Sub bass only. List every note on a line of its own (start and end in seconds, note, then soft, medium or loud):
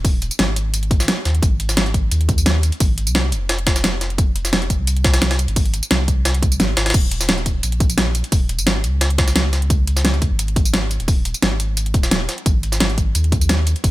0.00 0.30 D#1 loud
0.39 1.07 G#1 loud
1.25 1.41 D#2 loud
1.43 2.10 G#1 loud
2.12 2.71 D#2 medium
2.81 3.09 G#1 loud
3.07 3.34 C2 medium
3.32 4.69 F1 medium
4.70 4.78 F1 medium
4.79 5.47 C2 loud
5.48 5.81 G#1 loud
5.91 6.59 C2 medium
6.60 6.75 G#1 loud
6.77 6.93 G#1 loud
6.94 7.62 D#1 loud
7.63 8.23 A#1 medium
8.32 8.60 D#1 loud
8.59 8.85 G#1 medium
8.84 10.21 C#2 medium
10.22 10.30 C#2 medium
10.31 10.98 G#1 loud
11.00 11.33 D#1 loud
11.43 11.94 G#1 medium
11.94 12.27 D#1 loud
12.46 13.14 G#1 loud
13.15 13.74 D#2 medium
13.84 13.91 G#1 loud